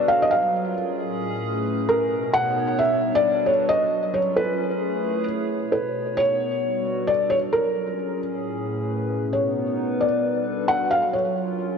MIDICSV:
0, 0, Header, 1, 3, 480
1, 0, Start_track
1, 0, Tempo, 451128
1, 102, Time_signature, 4, 2, 24, 8
1, 12533, End_track
2, 0, Start_track
2, 0, Title_t, "Felt piano"
2, 0, Program_c, 0, 0
2, 88, Note_on_c, 0, 77, 95
2, 237, Note_on_c, 0, 75, 92
2, 248, Note_off_c, 0, 77, 0
2, 327, Note_on_c, 0, 77, 93
2, 338, Note_off_c, 0, 75, 0
2, 780, Note_off_c, 0, 77, 0
2, 2007, Note_on_c, 0, 70, 98
2, 2460, Note_off_c, 0, 70, 0
2, 2484, Note_on_c, 0, 78, 113
2, 2964, Note_on_c, 0, 76, 101
2, 2988, Note_off_c, 0, 78, 0
2, 3353, Note_on_c, 0, 74, 113
2, 3374, Note_off_c, 0, 76, 0
2, 3685, Note_on_c, 0, 73, 92
2, 3703, Note_off_c, 0, 74, 0
2, 3924, Note_on_c, 0, 75, 105
2, 3941, Note_off_c, 0, 73, 0
2, 4402, Note_on_c, 0, 73, 93
2, 4428, Note_off_c, 0, 75, 0
2, 4644, Note_on_c, 0, 71, 102
2, 4660, Note_off_c, 0, 73, 0
2, 5571, Note_off_c, 0, 71, 0
2, 6087, Note_on_c, 0, 71, 85
2, 6565, Note_on_c, 0, 73, 109
2, 6589, Note_off_c, 0, 71, 0
2, 7526, Note_on_c, 0, 74, 98
2, 7563, Note_off_c, 0, 73, 0
2, 7766, Note_on_c, 0, 73, 101
2, 7782, Note_off_c, 0, 74, 0
2, 7822, Note_off_c, 0, 73, 0
2, 8008, Note_on_c, 0, 70, 98
2, 8693, Note_off_c, 0, 70, 0
2, 9925, Note_on_c, 0, 73, 84
2, 10646, Note_on_c, 0, 74, 85
2, 10676, Note_off_c, 0, 73, 0
2, 11365, Note_on_c, 0, 78, 104
2, 11396, Note_off_c, 0, 74, 0
2, 11605, Note_on_c, 0, 77, 101
2, 11621, Note_off_c, 0, 78, 0
2, 11845, Note_on_c, 0, 73, 84
2, 11861, Note_off_c, 0, 77, 0
2, 12531, Note_off_c, 0, 73, 0
2, 12533, End_track
3, 0, Start_track
3, 0, Title_t, "Ambient pad"
3, 0, Program_c, 1, 92
3, 104, Note_on_c, 1, 54, 81
3, 531, Note_on_c, 1, 61, 74
3, 547, Note_on_c, 1, 68, 79
3, 1063, Note_off_c, 1, 54, 0
3, 1064, Note_on_c, 1, 45, 71
3, 1382, Note_on_c, 1, 57, 75
3, 2023, Note_off_c, 1, 45, 0
3, 2023, Note_off_c, 1, 57, 0
3, 2023, Note_on_c, 1, 47, 82
3, 2249, Note_on_c, 1, 73, 86
3, 2258, Note_on_c, 1, 59, 73
3, 2430, Note_off_c, 1, 61, 0
3, 2430, Note_off_c, 1, 68, 0
3, 2982, Note_off_c, 1, 47, 0
3, 2984, Note_on_c, 1, 55, 73
3, 3069, Note_on_c, 1, 62, 72
3, 3390, Note_off_c, 1, 59, 0
3, 3390, Note_off_c, 1, 73, 0
3, 3943, Note_off_c, 1, 55, 0
3, 3943, Note_on_c, 1, 54, 87
3, 3944, Note_off_c, 1, 62, 0
3, 4185, Note_on_c, 1, 61, 73
3, 4331, Note_on_c, 1, 68, 88
3, 4903, Note_off_c, 1, 54, 0
3, 4903, Note_on_c, 1, 57, 91
3, 5108, Note_on_c, 1, 64, 73
3, 5183, Note_on_c, 1, 71, 78
3, 5309, Note_off_c, 1, 61, 0
3, 5349, Note_on_c, 1, 73, 77
3, 5863, Note_off_c, 1, 57, 0
3, 5863, Note_off_c, 1, 64, 0
3, 5863, Note_off_c, 1, 71, 0
3, 5864, Note_on_c, 1, 47, 80
3, 6270, Note_off_c, 1, 68, 0
3, 6293, Note_on_c, 1, 59, 70
3, 6823, Note_off_c, 1, 47, 0
3, 6824, Note_on_c, 1, 55, 81
3, 6993, Note_on_c, 1, 66, 87
3, 7023, Note_on_c, 1, 71, 68
3, 7170, Note_on_c, 1, 62, 61
3, 7230, Note_off_c, 1, 59, 0
3, 7231, Note_off_c, 1, 73, 0
3, 7782, Note_off_c, 1, 62, 0
3, 7782, Note_off_c, 1, 71, 0
3, 7782, Note_on_c, 1, 54, 76
3, 7783, Note_off_c, 1, 55, 0
3, 7783, Note_off_c, 1, 66, 0
3, 8055, Note_on_c, 1, 61, 77
3, 8150, Note_on_c, 1, 68, 95
3, 8739, Note_on_c, 1, 45, 88
3, 8742, Note_off_c, 1, 54, 0
3, 9013, Note_on_c, 1, 57, 71
3, 9700, Note_on_c, 1, 47, 82
3, 9701, Note_off_c, 1, 45, 0
3, 9701, Note_off_c, 1, 57, 0
3, 9753, Note_on_c, 1, 59, 72
3, 9927, Note_on_c, 1, 63, 90
3, 10109, Note_off_c, 1, 68, 0
3, 10110, Note_off_c, 1, 61, 0
3, 10143, Note_on_c, 1, 71, 83
3, 10660, Note_off_c, 1, 63, 0
3, 10661, Note_off_c, 1, 47, 0
3, 10661, Note_on_c, 1, 55, 84
3, 10914, Note_on_c, 1, 69, 80
3, 11006, Note_on_c, 1, 62, 82
3, 11068, Note_off_c, 1, 71, 0
3, 11069, Note_off_c, 1, 59, 0
3, 11621, Note_off_c, 1, 62, 0
3, 11621, Note_off_c, 1, 69, 0
3, 11621, Note_on_c, 1, 54, 75
3, 11622, Note_off_c, 1, 55, 0
3, 11865, Note_on_c, 1, 65, 85
3, 11884, Note_on_c, 1, 61, 82
3, 12064, Note_on_c, 1, 68, 78
3, 12533, Note_off_c, 1, 54, 0
3, 12533, Note_off_c, 1, 61, 0
3, 12533, Note_off_c, 1, 65, 0
3, 12533, Note_off_c, 1, 68, 0
3, 12533, End_track
0, 0, End_of_file